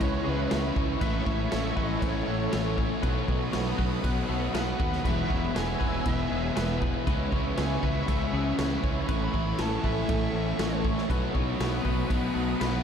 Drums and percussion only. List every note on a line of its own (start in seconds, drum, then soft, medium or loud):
0.01 kick loud
0.01 crash medium
0.51 snare loud
0.51 crash medium
0.76 kick medium
1.01 kick loud
1.01 crash medium
1.26 kick medium
1.52 snare loud
1.52 crash medium
1.77 kick medium
2.02 kick loud
2.02 crash medium
2.53 snare loud
2.53 crash medium
2.78 kick medium
3.03 kick loud
3.03 crash medium
3.28 kick medium
3.53 snare loud
3.53 crash medium
3.79 kick medium
4.04 kick loud
4.04 crash medium
4.55 snare loud
4.55 crash medium
4.80 kick loud
4.93 snare soft
5.05 kick loud
5.05 crash medium
5.30 kick medium
5.56 snare loud
5.56 crash medium
5.81 kick medium
6.06 kick loud
6.06 crash medium
6.57 snare loud
6.57 crash medium
6.82 kick loud
7.07 kick loud
7.07 crash medium
7.32 kick medium
7.58 snare loud
7.58 crash medium
7.83 kick medium
8.08 kick loud
8.08 crash medium
8.59 snare loud
8.59 crash medium
8.84 kick loud
9.09 kick loud
9.09 crash medium
9.34 kick medium
9.59 snare loud
9.59 crash medium
9.84 kick medium
10.09 kick loud
10.09 crash medium
10.59 snare loud
10.59 crash medium
10.85 kick medium
10.98 snare soft
11.10 kick loud
11.10 crash medium
11.35 kick medium
11.60 snare loud
11.60 crash medium
11.85 kick medium
12.10 kick loud
12.10 crash medium
12.61 snare loud
12.61 crash medium